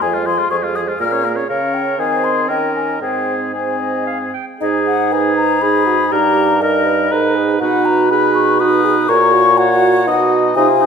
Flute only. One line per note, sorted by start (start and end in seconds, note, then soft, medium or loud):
0.02 0.25 G#5 medium
0.26 0.50 C6 medium
0.50 0.56 C#6 medium
0.75 0.81 D#6 medium
0.99 1.27 F6 medium
1.49 1.75 F5 medium
1.74 1.97 G5 medium
1.98 2.25 G#5 medium
2.24 2.48 C6 medium
2.49 2.74 G5 medium
2.75 3.00 G#5 medium
3.01 3.35 G5 medium
3.54 4.30 G#5 soft
4.61 4.67 D#5 medium
4.87 5.14 F#5 medium
5.12 5.36 G#5 medium
5.36 5.63 A#5 medium
5.62 6.13 B5 medium
6.12 6.63 A#5 loud
6.62 7.36 D#5 medium
7.60 7.86 F#5 medium
7.85 8.11 A#5 loud
8.10 8.34 B5 medium
8.34 8.61 C#6 medium
8.60 9.10 D#6 loud
9.08 9.59 C#6 loud
9.58 10.32 F#5 loud
10.55 10.86 G#5 loud